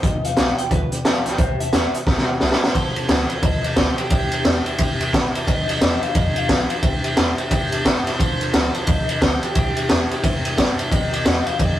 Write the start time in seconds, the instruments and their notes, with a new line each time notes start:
0.01 upright bass G1, steel-string acoustic guitar G2 D3 F3 B3 F4 G4, upright piano B4 D5 G5, clean electric guitar D#5, kick, closed hi-hat
0.23 steel-string acoustic guitar F3 B3 F4 G4, upright piano B4 D5 G5, clean electric guitar F5, closed hi-hat
0.36 upright bass B1, steel-string acoustic guitar F3 G4, upright piano G5, snare, closed hi-hat
0.57 steel-string acoustic guitar F3 B3 F4 G4, upright piano B4 D5, clean electric guitar G5, closed hi-hat
0.69 upright bass D2, steel-string acoustic guitar G2 D3 F3 B3 F4 G4, clean electric guitar B4, upright piano B4 D5 E5, kick, closed hi-hat
0.90 steel-string acoustic guitar F3 B3 F4 G4, upright piano B4 D5 G5, muted upright bass stroke, closed hi-hat
1.03 upright bass F2, steel-string acoustic guitar F3 B3 F4 G4, upright piano B4 F5, clean electric guitar F5 A5, snare, closed hi-hat
1.24 upright bass D2, steel-string acoustic guitar F3 B3 F4 G4, clean electric guitar D5 G5, upright piano D5 G5, snare, closed hi-hat
1.36 upright bass C2, steel-string acoustic guitar C3 G3 C4 E4 G4, clean electric guitar C5 E5, upright piano C5 E5 G5, kick, closed hi-hat
1.58 steel-string acoustic guitar C4 E4 G4, upright piano C5 E5 A5, clean electric guitar E5, muted upright bass stroke, closed hi-hat
1.72 upright bass E2, steel-string acoustic guitar G3 G4, upright piano C5 E5 G5, snare, closed hi-hat
1.93 steel-string acoustic guitar C4 E4 G4, upright piano C5 E5 G5, muted upright bass stroke, closed hi-hat
2.06 upright bass C2, steel-string acoustic guitar C3 G3 C4 E4 G4, upright piano C5 E5 G5, kick, snare
2.18 snare
2.26 steel-string acoustic guitar C4 E4 G4, upright piano C5 E5 G5, muted upright bass stroke
2.40 upright bass C2, steel-string acoustic guitar G3 C4 E4 G4, upright piano C5 E5 G5, snare
2.52 snare
2.61 steel-string acoustic guitar E4, upright piano C5 E5 A#5, muted upright bass stroke, snare
2.74 upright bass F1, steel-string acoustic guitar F3 F4 A4, clean electric guitar C5, upright piano C5 F5 A5, kick, ride
2.95 upright bass A1, steel-string acoustic guitar C4 F4 A4, upright piano C5 F5 A5, ride
3.09 upright bass D2, steel-string acoustic guitar F3 F4 A4, upright piano C5 F5, snare, ride
3.30 steel-string acoustic guitar C4 F4 A4, upright piano C5 F5 G5, ride
3.43 upright bass D2, steel-string acoustic guitar F3 C4 F4 A4, upright piano C5 F5 A5, clean electric guitar D#5, kick, ride
3.63 steel-string acoustic guitar C4 A4, upright piano C5 F5 A5, clean electric guitar D#5, muted upright bass stroke, ride
3.76 upright bass D2, steel-string acoustic guitar F3 F4 A4, clean electric guitar C5, upright piano C5 F5 A5, kick, snare, ride
3.97 steel-string acoustic guitar C4 F4 A4, clean electric guitar G4, upright piano C5 F5 A5, ride
4.10 upright bass C2, steel-string acoustic guitar C3 G3 C4 E4 G4, clean electric guitar G4, upright piano C5 E5 G5, kick, ride
4.31 steel-string acoustic guitar C4 G4, upright piano C5 E5 G5, ride
4.45 upright bass E2, steel-string acoustic guitar G3 G4, upright piano C5 E5 G5, snare, ride
4.66 steel-string acoustic guitar C4 E4 G4, upright piano C5 E5 G5, ride
4.78 upright bass G2, steel-string acoustic guitar C3 G3 C4 E4 G4, upright piano C5 E5 G5, kick, ride
4.99 steel-string acoustic guitar C4 E4 G4, upright piano C5 E5 G5, muted upright bass stroke, ride
5.13 upright bass A1, steel-string acoustic guitar G3, upright piano C5 E5 G5, kick, snare, ride
5.34 steel-string acoustic guitar C4 E4 G4, upright piano C5 E5 A5, muted upright bass stroke, ride
5.46 upright bass G1, steel-string acoustic guitar G2 D3 F3 B3 F4 G4, upright piano B4 D5 G5, clean electric guitar D#5, kick, ride
5.68 upright bass C2, steel-string acoustic guitar F3 B3 F4 G4, upright piano B4 D5 F5, clean electric guitar D#5, ride
5.80 upright bass E2, steel-string acoustic guitar F3 F4 G4, upright piano B4 G5, snare, ride
6.02 steel-string acoustic guitar F3 B3 F4, upright piano B4 D5 G5, clean electric guitar F5, ride
6.14 upright bass F2, steel-string acoustic guitar G2 D3 F3 B3 F4 G4, upright piano B4 D5 F5, clean electric guitar D#5, kick, ride
6.34 steel-string acoustic guitar F3 B3 F4 G4, upright piano B4 D5 G5, clean electric guitar F5, ride
6.48 upright bass B1, steel-string acoustic guitar F3, kick, snare, ride
6.69 steel-string acoustic guitar F3 B3 F4 G4, upright piano B4 D5 F5, ride
6.82 upright bass C2, steel-string acoustic guitar C3 G3 C4 E4 G4, upright piano C5 E5 G5, kick, ride
7.03 steel-string acoustic guitar C4 E4 G4, upright piano C5 E5 G5, ride
7.16 upright bass E2, steel-string acoustic guitar G3 G4, upright piano C5, snare, ride
7.37 steel-string acoustic guitar C4 E4 G4, upright piano C5 E5 G5, muted upright bass stroke, ride
7.50 upright bass G2, steel-string acoustic guitar C3 G3 C4 E4 G4, upright piano C5 E5 G5, kick, ride
7.72 steel-string acoustic guitar C4 E4 G4, upright piano C5 E5 A5, muted upright bass stroke, ride
7.85 upright bass G2, steel-string acoustic guitar G3, upright piano C5 E5 G5, kick, snare, ride
8.06 steel-string acoustic guitar C4 E4 G4, upright piano C5 E5 A5, muted upright bass stroke, snare, ride
8.18 upright bass F1, steel-string acoustic guitar F3 C4 F4 A4, upright piano C5 A5, clean electric guitar C5, kick, ride
8.40 upright bass A1, steel-string acoustic guitar C4 F4 A4, upright piano C5 F5 A5, ride
8.53 upright bass D2, steel-string acoustic guitar F3 F4 A4, upright piano G5, snare, ride
8.74 steel-string acoustic guitar C4 F4 A4, upright piano C5 F5 A5, ride
8.87 upright bass D2, steel-string acoustic guitar F3 C4 F4 A4, upright piano C5 F5 A5, clean electric guitar D#5, kick, ride
9.08 steel-string acoustic guitar C4 F4 A4, upright piano C5 B5, clean electric guitar D#5, ride
9.21 upright bass D2, upright piano C5 B5, clean electric guitar C5, kick, snare, ride
9.42 steel-string acoustic guitar C4 F4 A4, clean electric guitar G4, upright piano C5 F5 A5, muted upright bass stroke, ride
9.54 upright bass C2, steel-string acoustic guitar C3 G3 C4 E4 G4, clean electric guitar G4, upright piano C5 E5 G5, kick, ride
9.75 steel-string acoustic guitar C4 G4, upright piano C5 E5 G5, muted upright bass stroke, ride
9.88 upright bass E2, steel-string acoustic guitar G3 E4, upright piano C5 E5 G5, snare, ride
10.10 steel-string acoustic guitar C4 E4 G4, upright piano C5 E5 G5, ride
10.22 upright bass G2, steel-string acoustic guitar C3 G3 C4 E4 G4, upright piano C5 E5 G5, kick, ride
10.44 steel-string acoustic guitar C4 E4 G4, upright piano C5 E5 G5, muted upright bass stroke, ride
10.56 upright bass G2, steel-string acoustic guitar G3, upright piano C5 E5 G5, kick, snare, ride
10.77 steel-string acoustic guitar C4 E4 G4, upright piano C5 E5 A5, muted upright bass stroke, ride
10.90 upright bass G1, steel-string acoustic guitar G2 D3 F3 B3 F4 G4, upright piano B4 D5 G5, clean electric guitar D#5, kick, ride
11.11 upright bass C2, steel-string acoustic guitar F3 B3 F4 G4, upright piano B4 D5 G5, clean electric guitar D#5, ride
11.24 upright bass E2, steel-string acoustic guitar F3 B3 G4, upright piano G5, snare, ride
11.45 steel-string acoustic guitar F3 B3 F4 G4, upright piano B4 D5 G5, clean electric guitar F5, ride
11.58 upright bass F2, steel-string acoustic guitar G2 D3 F3 B3 F4 G4, upright piano B4 D5 G5, clean electric guitar D#5, kick, ride